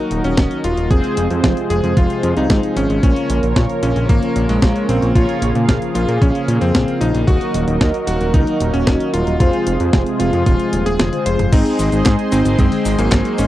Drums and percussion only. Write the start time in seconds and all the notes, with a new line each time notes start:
0.11 closed hi-hat
0.24 closed hi-hat
0.37 kick, snare, closed hi-hat
0.51 closed hi-hat
0.64 closed hi-hat
0.77 closed hi-hat
0.91 kick, closed hi-hat
1.04 closed hi-hat
1.17 closed hi-hat
1.30 closed hi-hat
1.44 kick, snare, closed hi-hat
1.57 closed hi-hat
1.70 closed hi-hat
1.84 closed hi-hat
1.97 kick, closed hi-hat
2.10 closed hi-hat
2.23 closed hi-hat
2.37 closed hi-hat
2.50 kick, snare, closed hi-hat
2.63 closed hi-hat
2.77 closed hi-hat
2.90 closed hi-hat
3.03 kick, closed hi-hat
3.16 closed hi-hat
3.30 closed hi-hat
3.43 closed hi-hat
3.56 kick, snare, closed hi-hat
3.69 closed hi-hat
3.83 closed hi-hat
3.96 closed hi-hat
4.09 kick, closed hi-hat
4.23 closed hi-hat
4.36 closed hi-hat
4.49 closed hi-hat
4.62 kick, snare, closed hi-hat
4.76 closed hi-hat
4.89 closed hi-hat
5.02 closed hi-hat
5.15 kick, closed hi-hat
5.29 closed hi-hat
5.42 closed hi-hat
5.55 closed hi-hat
5.69 kick, snare, closed hi-hat
5.82 closed hi-hat
5.95 closed hi-hat
6.09 closed hi-hat
6.22 kick, closed hi-hat
6.35 closed hi-hat
6.48 closed hi-hat
6.62 closed hi-hat
6.75 kick, snare, closed hi-hat
6.88 closed hi-hat
7.01 closed hi-hat
7.15 closed hi-hat
7.28 kick, closed hi-hat
7.41 closed hi-hat
7.54 closed hi-hat
7.68 closed hi-hat
7.81 kick, snare, closed hi-hat
7.94 closed hi-hat
8.07 closed hi-hat
8.21 closed hi-hat
8.34 kick, closed hi-hat
8.47 closed hi-hat
8.61 closed hi-hat
8.74 closed hi-hat
8.87 kick, snare, closed hi-hat
9.00 closed hi-hat
9.14 closed hi-hat
9.27 closed hi-hat
9.40 kick, closed hi-hat
9.53 closed hi-hat
9.67 closed hi-hat
9.80 closed hi-hat
9.93 kick, snare, closed hi-hat
10.06 closed hi-hat
10.20 closed hi-hat
10.33 closed hi-hat
10.46 kick, closed hi-hat
10.60 closed hi-hat
10.73 closed hi-hat
10.86 snare, closed hi-hat
10.99 snare, closed hi-hat, high tom
11.13 closed hi-hat, high tom
11.26 closed hi-hat
11.39 closed hi-hat, mid tom
11.53 kick, closed hi-hat, crash, cabasa
11.66 closed hi-hat
11.79 open hi-hat, cabasa
11.92 closed hi-hat, cabasa
12.06 kick, snare, clap, closed hi-hat, cabasa
12.19 closed hi-hat
12.32 open hi-hat, cabasa
12.45 closed hi-hat, high tom, cabasa
12.59 kick, closed hi-hat, cabasa
12.72 open hi-hat, high tom
12.85 open hi-hat, cabasa
12.99 closed hi-hat, cabasa
13.12 kick, snare, clap, closed hi-hat, cabasa
13.25 closed hi-hat
13.38 open hi-hat, cabasa